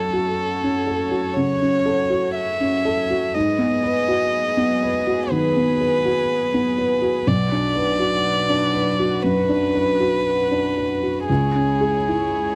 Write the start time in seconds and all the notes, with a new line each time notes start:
Already playing: F#2 F#3 C#4 F#4 A4 C#5
0.13 F#4
0.63 C#4
0.87 A4
1.11 F#4
1.34 C#3 C#5
1.62 C#4
1.86 A4
2.10 F#4
2.35 E5
2.60 C#4
2.85 A4
3.10 F#4
3.32 G#2 F#3 G#4 B4 D#5
3.59 B3
3.83 B4
4.08 F#4
4.57 B3
4.83 B4
5.07 F#4
5.31 D#3 B4
5.57 B3
5.81 B4
6.05 F#4
6.54 B3
6.78 B4
7.02 F#4
7.27 B1 F#3 F#4 B4 D5
7.52 D4
7.75 B4
7.99 F#4
8.49 D4
8.74 B4
8.99 F#4
9.22 F#2 B4
9.49 D4
9.75 B4
10.00 F#4
10.51 D4
10.77 B4
11.03 F#4
11.28 C#2 G#3 E4 G#4 C#5
11.55 C#4
11.81 G#4
12.08 E4